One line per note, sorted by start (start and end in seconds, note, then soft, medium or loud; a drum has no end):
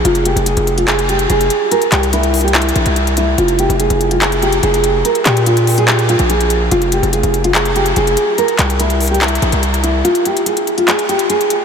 0.05 0.35 F1 loud
0.05 0.24 F4 loud
0.05 closed hi-hat medium
0.15 closed hi-hat medium
0.25 0.45 G4 medium
0.25 closed hi-hat medium
0.36 0.56 F1 loud
0.36 closed hi-hat medium
0.46 0.76 G#4 medium
0.46 closed hi-hat medium
0.57 1.27 F1 loud
0.57 closed hi-hat medium
0.67 closed hi-hat medium
0.78 0.87 F4 medium
0.78 closed hi-hat medium
0.87 1.07 G#4 medium
0.87 clap loud
0.87 closed hi-hat medium
0.99 closed hi-hat medium
1.09 1.28 G4 medium
1.09 closed hi-hat medium
1.19 closed hi-hat medium
1.30 1.50 F1 loud
1.30 1.69 G#4 medium
1.30 closed hi-hat medium
1.41 closed hi-hat medium
1.50 closed hi-hat medium
1.71 1.91 A#4 loud
1.71 closed hi-hat medium
1.82 closed hi-hat medium
1.92 2.72 C2 loud
1.92 2.12 G4 medium
1.92 clap loud
1.92 closed hi-hat medium
2.03 closed hi-hat medium
2.13 2.43 E4 medium
2.13 closed hi-hat medium
2.23 closed hi-hat medium
2.34 closed hi-hat soft
2.34 open hi-hat medium
2.41 2.54 G4 medium
2.41 closed hi-hat soft
2.48 closed hi-hat soft
2.55 3.13 E4 medium
2.55 clap loud
2.55 closed hi-hat medium
2.62 closed hi-hat medium
2.69 closed hi-hat medium
2.76 2.86 A#1 loud
2.76 closed hi-hat medium
2.86 3.36 C2 loud
2.86 closed hi-hat medium
2.96 closed hi-hat medium
3.07 closed hi-hat medium
3.17 3.37 E4 medium
3.17 closed hi-hat medium
3.38 3.68 F1 loud
3.38 3.57 F4 loud
3.38 closed hi-hat medium
3.48 closed hi-hat medium
3.59 3.79 G4 medium
3.59 closed hi-hat medium
3.69 3.89 F1 loud
3.69 closed hi-hat medium
3.79 4.09 G#4 medium
3.79 closed hi-hat medium
3.90 4.60 F1 loud
3.90 closed hi-hat medium
4.01 closed hi-hat medium
4.11 4.21 F4 medium
4.11 closed hi-hat medium
4.21 4.41 G#4 medium
4.21 clap loud
4.21 closed hi-hat medium
4.32 closed hi-hat medium
4.42 4.62 G4 medium
4.42 closed hi-hat medium
4.52 closed hi-hat medium
4.63 5.03 F1 loud
4.63 5.02 G#4 medium
4.63 closed hi-hat medium
4.74 closed hi-hat medium
4.84 closed hi-hat medium
5.05 5.24 A#4 loud
5.05 closed hi-hat medium
5.15 closed hi-hat medium
5.25 6.16 A#2 loud
5.25 5.45 G4 medium
5.25 clap loud
5.25 closed hi-hat medium
5.37 closed hi-hat medium
5.46 5.76 F4 medium
5.46 closed hi-hat medium
5.57 closed hi-hat medium
5.67 closed hi-hat medium
5.67 open hi-hat medium
5.78 5.87 G#4 medium
5.78 closed hi-hat medium
5.88 6.07 G4 medium
5.88 clap loud
5.88 closed hi-hat medium
5.99 closed hi-hat medium
6.09 6.28 F4 medium
6.09 closed hi-hat medium
6.19 6.69 A#1 loud
6.19 closed hi-hat medium
6.30 6.69 G#4 medium
6.30 closed hi-hat medium
6.41 closed hi-hat medium
6.50 closed hi-hat medium
6.71 7.01 F1 loud
6.71 6.91 F4 loud
6.71 closed hi-hat medium
6.82 closed hi-hat medium
6.92 7.12 G4 medium
6.92 closed hi-hat medium
7.03 7.23 F1 loud
7.03 closed hi-hat medium
7.13 7.42 G#4 medium
7.13 closed hi-hat medium
7.23 7.93 F1 loud
7.23 closed hi-hat medium
7.34 closed hi-hat medium
7.44 7.54 F4 medium
7.44 closed hi-hat medium
7.54 7.74 G#4 medium
7.54 clap loud
7.54 closed hi-hat medium
7.65 closed hi-hat medium
7.76 7.95 G4 medium
7.76 closed hi-hat medium
7.86 closed hi-hat medium
7.96 8.16 F1 loud
7.96 8.36 G#4 medium
7.96 closed hi-hat medium
8.07 closed hi-hat medium
8.17 closed hi-hat medium
8.38 8.57 A#4 loud
8.38 closed hi-hat medium
8.48 closed hi-hat soft
8.59 9.39 C2 loud
8.59 8.78 G4 medium
8.59 clap loud
8.59 closed hi-hat medium
8.70 closed hi-hat medium
8.80 9.09 E4 medium
8.80 closed hi-hat medium
8.90 closed hi-hat medium
9.00 closed hi-hat soft
9.00 open hi-hat medium
9.07 9.21 G4 medium
9.07 closed hi-hat soft
9.14 closed hi-hat soft
9.21 9.80 E4 medium
9.21 clap loud
9.21 closed hi-hat medium
9.28 closed hi-hat medium
9.35 closed hi-hat medium
9.42 9.52 A#1 loud
9.42 closed hi-hat medium
9.52 10.03 C2 loud
9.52 closed hi-hat medium
9.63 closed hi-hat medium
9.74 closed hi-hat medium
9.84 10.03 E4 medium
9.84 closed hi-hat medium
10.04 10.24 F4 loud
10.04 closed hi-hat medium
10.15 closed hi-hat soft
10.25 10.45 G4 medium
10.25 closed hi-hat medium
10.37 closed hi-hat medium
10.46 10.76 G#4 medium
10.46 closed hi-hat medium
10.57 closed hi-hat medium
10.67 closed hi-hat medium
10.78 10.87 F4 medium
10.78 closed hi-hat soft
10.88 11.07 G#4 medium
10.88 clap loud
10.88 closed hi-hat medium
10.99 closed hi-hat medium
11.09 11.28 G4 medium
11.09 closed hi-hat medium
11.19 closed hi-hat medium
11.30 11.65 G#4 medium
11.30 closed hi-hat medium
11.41 closed hi-hat medium
11.50 closed hi-hat medium